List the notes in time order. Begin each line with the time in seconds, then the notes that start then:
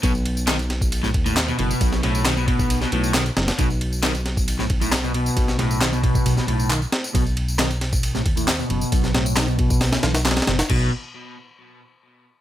0.03 B1 B2, kick, ride, tambourine
0.15 tambourine
0.26 ride
0.37 tambourine
0.48 D#3, snare, clap, ride, tambourine
0.59 ride, tambourine
0.70 snare, ride
0.81 kick, tambourine
0.92 ride, tambourine
1.03 A2, snare, tambourine
1.14 D#2, kick, ride
1.26 A2, ride, tambourine
1.37 snare, clap, ride, tambourine
1.48 B2, tambourine
1.59 F#1 B2, ride
1.71 tambourine
1.81 B1, kick, ride, tambourine
1.92 snare, tambourine
2.03 A2, snare, ride
2.15 tambourine
2.25 D#3, snare, clap, ride, tambourine
2.37 B2, tambourine
2.48 B2, kick, ride
2.59 kick, tambourine
2.70 ride, tambourine
2.81 B2, snare, tambourine
2.92 B1 A2, ride
3.04 tambourine
3.14 D#3, snare, clap, ride, tambourine
3.26 ride, tambourine
3.37 F#1, snare, ride
3.48 snare, ride, tambourine
3.59 B1 B2, kick, ride, tambourine
3.70 tambourine
3.81 ride
3.93 tambourine
4.03 D#3, snare, clap, ride, tambourine
4.15 ride, tambourine
4.26 snare, ride
4.37 kick, tambourine
4.48 ride, tambourine
4.59 A2, snare, tambourine
4.70 kick, ride
4.81 A2, ride, tambourine
4.92 snare, clap, ride, tambourine
5.04 B2, tambourine
5.14 B2, ride
5.26 tambourine
5.37 B1, kick, ride, tambourine
5.48 snare, tambourine
5.59 A2, snare, ride
5.71 tambourine
5.81 D#3, snare, clap, ride, tambourine
5.93 B2, tambourine
6.03 B2, kick, ride
6.15 kick, tambourine
6.26 B1, ride, tambourine
6.37 B2, snare, tambourine
6.48 B1 A2, ride
6.60 tambourine
6.70 D#3, clap, tambourine
6.82 tambourine
6.92 snare, ride
7.04 tambourine
7.14 B1 B2, kick, ride, tambourine
7.26 tambourine
7.37 ride
7.48 tambourine
7.59 D#3, snare, clap, ride, tambourine
7.71 ride, tambourine
7.81 snare, ride
7.93 kick, tambourine
8.03 ride, tambourine
8.15 A2, snare, tambourine
8.26 D#2, kick, ride
8.37 A2, ride, tambourine
8.48 snare, clap, ride, tambourine
8.59 B2, tambourine
8.70 F#1 B2, ride
8.81 tambourine
8.92 B1, kick, ride, tambourine
9.04 snare, tambourine
9.14 A2, snare, ride
9.26 tambourine
9.37 D#3, snare, clap, ride, tambourine
9.48 B2, tambourine
9.59 B2, kick, ride
9.70 kick, tambourine
9.81 snare, ride, tambourine
9.92 B2, snare, ride, tambourine
10.03 B1 E3, snare, ride
10.15 snare, ride, tambourine
10.25 F#3, snare, clap, ride, tambourine
10.31 snare, ride
10.37 snare, ride, tambourine
10.42 snare, ride
10.47 F#1 B2, snare, ride
10.59 snare, ride, tambourine
10.70 B1 B2, kick, crash